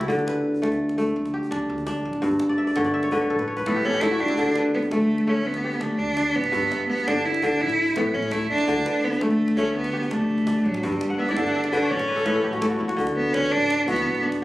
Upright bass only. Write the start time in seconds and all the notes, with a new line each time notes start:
0.10 D2
0.62 D2
1.16 D2
1.51 D2
1.69 D2
2.05 A1
2.23 G1
2.77 G1
3.30 A1
3.67 A1
3.85 A1
4.20 E2
4.38 D2
4.92 D2
5.45 D2
5.81 D2
5.99 D2
6.35 A1
6.53 G1
7.08 G1
7.61 A1
7.97 A1
8.14 A1
8.50 E2
8.68 D2
9.22 D2
9.75 D2
10.13 D2
10.30 D2
10.65 A1
10.84 G1
11.37 G1
11.91 A1
12.26 A1
12.45 A1
12.80 E2
12.98 D2
13.33 D2
13.52 A1
13.88 D2
14.06 A1